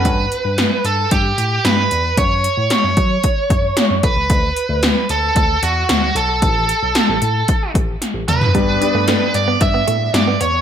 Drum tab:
HH |x-x-x-x-x-x-x-x-|x-x-x-x-x-x-x-x-|x-x-x-x-x-x-x-x-|x-x-x-x-x-x-x-x-|
SD |----o-------o---|----o-------o---|----o-------o---|----o-------o---|
T2 |----------------|----------------|----------------|--------------o-|
FT |----------------|----------------|----------------|---------------o|
BD |o-------o-------|o-----o-o-o---o-|o-------o-------|o-------o-o-----|

HH |x-x-x-x-x-x-x-x-|
SD |----o-------o---|
T2 |----------------|
FT |----------------|
BD |o-------o-------|